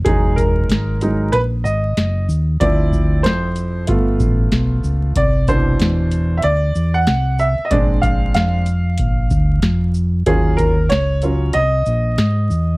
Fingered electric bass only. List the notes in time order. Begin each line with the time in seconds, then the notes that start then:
0.06 E1
0.69 G#1
1.33 A#1
1.65 G#1
1.97 F#1
2.28 D#2
2.61 D2
3.24 F2
3.88 G1
4.20 A1
4.52 B1
4.84 C#2
5.16 C2
5.80 E2
6.44 D2
6.75 E2
7.07 C2
7.59 muted fingered electric bass stroke
7.71 A#1
8.35 F2
8.99 A#1
9.31 D2
9.63 F2
10.26 D#2
10.91 C#2
11.55 C2
11.86 A#1
12.18 G#2
12.50 E2